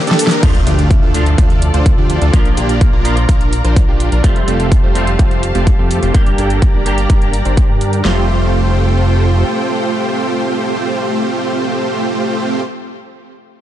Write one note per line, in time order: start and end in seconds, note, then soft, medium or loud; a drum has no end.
0.00 0.41 D3 medium
0.00 0.39 G3 medium
0.00 0.41 A#3 medium
0.00 0.41 G4 loud
0.07 0.28 D4 medium
0.07 0.28 G4 medium
0.07 0.28 A4 medium
0.07 snare loud
0.07 closed hi-hat soft
0.07 shaker soft
0.19 open hi-hat loud
0.19 ride medium
0.19 shaker medium
0.27 0.41 D4 medium
0.27 0.41 G4 medium
0.27 0.41 A#4 medium
0.27 snare loud
0.27 closed hi-hat medium
0.31 shaker soft
0.42 0.64 D2 medium
0.42 1.11 F3 loud
0.42 1.11 A3 medium
0.42 0.58 D4 medium
0.42 1.12 D4 medium
0.42 0.58 F4 medium
0.42 4.20 F4 medium
0.42 1.12 F4 loud
0.42 0.58 A4 medium
0.42 2.32 A4 medium
0.42 4.20 D5 medium
0.42 2.32 A5 medium
0.42 kick loud
0.42 closed hi-hat medium
0.42 crash medium
0.42 impact medium
0.55 closed hi-hat soft
0.67 1.00 D2 loud
0.67 0.90 D4 medium
0.67 0.90 F4 medium
0.67 0.90 G4 medium
0.67 closed hi-hat medium
0.79 closed hi-hat medium
0.91 kick loud
0.91 closed hi-hat medium
1.02 1.36 D2 medium
1.02 1.26 D4 medium
1.02 1.26 F4 medium
1.02 1.26 A4 medium
1.13 2.30 F3 medium
1.13 2.30 A3 medium
1.13 2.31 D4 medium
1.13 2.31 F4 medium
1.13 closed hi-hat medium
1.26 closed hi-hat soft
1.38 1.72 D2 medium
1.38 1.62 D4 medium
1.38 1.62 F4 medium
1.38 1.62 A4 loud
1.38 kick loud
1.38 closed hi-hat medium
1.50 closed hi-hat soft
1.62 closed hi-hat medium
1.74 1.95 D2 medium
1.74 1.89 D4 medium
1.74 1.89 F4 medium
1.74 1.89 C5 medium
1.74 closed hi-hat medium
1.86 kick loud
1.86 closed hi-hat medium
1.98 2.19 D2 medium
1.98 2.19 D4 medium
1.98 2.19 F4 medium
1.98 2.19 G4 medium
2.10 closed hi-hat medium
2.22 2.31 D2 loud
2.22 2.32 D4 medium
2.22 2.32 F4 medium
2.22 2.32 A4 medium
2.22 closed hi-hat medium
2.32 2.55 A#1 medium
2.32 3.01 F3 loud
2.32 3.02 A#3 medium
2.32 2.48 D4 medium
2.32 3.02 D4 medium
2.32 2.48 F4 medium
2.32 3.03 F4 loud
2.32 2.48 A#4 medium
2.32 4.22 A#4 medium
2.32 4.22 A#5 medium
2.32 kick loud
2.32 closed hi-hat medium
2.45 closed hi-hat soft
2.57 2.91 A#1 loud
2.57 2.81 D4 medium
2.57 2.81 F4 medium
2.57 2.81 G4 medium
2.57 closed hi-hat medium
2.69 closed hi-hat soft
2.81 kick loud
2.81 closed hi-hat medium
2.93 3.26 A#1 medium
2.93 3.16 D4 medium
2.93 3.16 F4 medium
2.93 3.16 A#4 medium
3.04 4.21 F3 medium
3.04 4.21 A#3 medium
3.04 4.21 D4 medium
3.04 4.22 F4 medium
3.04 closed hi-hat medium
3.17 closed hi-hat soft
3.29 3.62 A#1 medium
3.29 3.52 D4 medium
3.29 3.52 F4 medium
3.29 3.52 A#4 medium
3.29 kick loud
3.29 closed hi-hat medium
3.41 closed hi-hat soft
3.53 closed hi-hat medium
3.64 3.86 A#1 medium
3.64 3.79 D4 medium
3.64 3.79 F4 medium
3.64 3.79 C5 medium
3.64 closed hi-hat soft
3.76 kick loud
3.76 closed hi-hat medium
3.88 4.10 A#1 medium
3.88 4.09 D4 medium
3.88 4.09 F4 medium
3.88 4.09 G4 medium
4.00 closed hi-hat medium
4.12 4.22 A#1 medium
4.12 4.22 D4 medium
4.12 4.22 F4 medium
4.12 4.22 A#4 medium
4.12 closed hi-hat soft
4.23 4.45 F1 loud
4.23 4.92 G3 medium
4.23 4.92 A3 medium
4.23 4.39 A3 medium
4.23 4.39 C4 medium
4.23 4.93 C4 medium
4.23 4.39 F4 medium
4.23 4.93 F4 loud
4.23 4.39 G4 medium
4.23 8.01 G4 medium
4.23 4.39 C5 medium
4.23 6.13 C5 medium
4.23 6.13 F5 medium
4.23 6.13 A5 medium
4.23 kick loud
4.23 closed hi-hat medium
4.36 closed hi-hat soft
4.48 4.81 F1 loud
4.48 4.71 A3 medium
4.48 4.71 C4 medium
4.48 4.71 F4 medium
4.48 4.71 G4 medium
4.48 4.71 A4 medium
4.48 closed hi-hat medium
4.60 closed hi-hat soft
4.72 kick loud
4.72 closed hi-hat medium
4.83 5.17 F1 medium
4.83 5.07 A3 medium
4.83 5.07 C4 medium
4.83 5.07 F4 medium
4.83 5.07 G4 medium
4.83 5.07 C5 medium
4.94 6.11 G3 medium
4.94 6.11 A3 medium
4.94 6.12 C4 medium
4.94 6.12 F4 medium
4.94 closed hi-hat medium
5.07 closed hi-hat soft
5.19 5.53 F1 medium
5.19 5.43 A3 medium
5.19 5.43 C4 medium
5.19 5.43 F4 medium
5.19 5.43 G4 medium
5.19 5.43 C5 medium
5.19 kick loud
5.19 closed hi-hat medium
5.31 closed hi-hat soft
5.43 closed hi-hat medium
5.55 5.76 F1 medium
5.55 5.70 A3 medium
5.55 5.70 C4 medium
5.55 5.70 F4 medium
5.55 5.70 G4 medium
5.55 5.70 D5 medium
5.55 closed hi-hat soft
5.67 kick loud
5.67 closed hi-hat medium
5.79 6.00 F2 medium
5.79 6.00 A3 medium
5.79 6.00 C4 medium
5.79 6.00 F4 medium
5.79 6.00 G4 medium
5.79 6.00 A4 medium
5.91 closed hi-hat medium
6.03 6.12 F1 medium
6.03 6.13 A3 medium
6.03 6.13 C4 medium
6.03 6.13 F4 medium
6.03 6.13 G4 medium
6.03 6.13 C5 medium
6.03 closed hi-hat soft
6.13 6.36 G1 medium
6.13 6.82 G3 medium
6.13 6.83 A#3 medium
6.13 6.29 D4 medium
6.13 6.83 D4 medium
6.13 6.29 G4 medium
6.13 6.84 G4 loud
6.13 6.29 A#4 medium
6.13 8.03 A#4 medium
6.13 8.03 D5 medium
6.13 8.03 A#5 medium
6.13 kick loud
6.13 closed hi-hat medium
6.26 closed hi-hat soft
6.38 6.72 G1 medium
6.38 6.62 D4 medium
6.38 6.62 G4 medium
6.38 6.62 A4 medium
6.38 closed hi-hat medium
6.50 closed hi-hat soft
6.62 kick loud
6.62 closed hi-hat medium
6.74 7.07 G1 medium
6.74 6.97 D4 medium
6.74 6.97 G4 medium
6.74 6.97 A#4 medium
6.85 8.01 G3 medium
6.85 8.02 A#3 medium
6.85 8.02 D4 medium
6.85 8.03 G4 medium
6.85 closed hi-hat medium
6.98 closed hi-hat soft
7.10 7.43 G1 loud
7.10 7.33 D4 medium
7.10 7.33 G4 medium
7.10 7.33 A#4 medium
7.10 kick loud
7.10 closed hi-hat medium
7.22 closed hi-hat soft
7.33 closed hi-hat medium
7.45 7.67 G1 medium
7.45 7.66 D4 medium
7.45 7.66 G4 medium
7.45 7.66 C5 medium
7.45 closed hi-hat soft
7.57 kick loud
7.57 closed hi-hat medium
7.69 8.03 G2 medium
7.69 8.02 D4 medium
7.69 8.02 G4 medium
7.69 8.02 A#4 loud
7.81 closed hi-hat medium
7.93 closed hi-hat soft
8.03 9.44 F1 loud
8.03 12.95 G3 medium
8.03 12.96 A3 medium
8.03 12.62 A3 medium
8.03 12.62 C4 medium
8.03 12.97 C4 medium
8.03 12.62 F4 medium
8.03 12.98 F4 medium
8.03 12.62 G4 medium
8.03 12.62 A4 medium
8.03 12.62 C5 medium
8.03 12.62 G5 medium
8.03 snare loud
8.03 clap medium